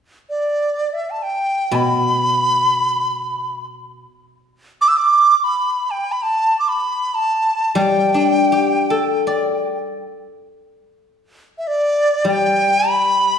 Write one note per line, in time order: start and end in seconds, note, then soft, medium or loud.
0.29 0.94 D5 medium
0.93 1.12 E5 medium
1.11 1.24 A5 medium
1.23 1.77 G5 medium
1.72 4.03 B2 soft
1.72 3.66 B5 medium
4.81 4.90 D6 medium
4.88 4.98 E6 medium
4.97 5.45 D6 medium
5.44 5.92 B5 medium
5.91 6.13 G5 medium
6.12 6.24 B5 medium
6.22 6.59 A5 medium
6.59 6.70 D6 medium
6.69 7.16 B5 medium
7.15 7.78 A5 medium
7.75 10.02 G3 medium
7.75 9.80 G5 medium
8.14 9.65 D4 soft
8.52 10.03 G4 soft
8.90 10.41 A4 soft
9.27 10.79 D5 soft
11.58 11.69 E5 medium
11.67 12.28 D5 medium
12.25 13.39 G3 soft
12.25 12.91 G5 medium
12.89 13.39 B5 medium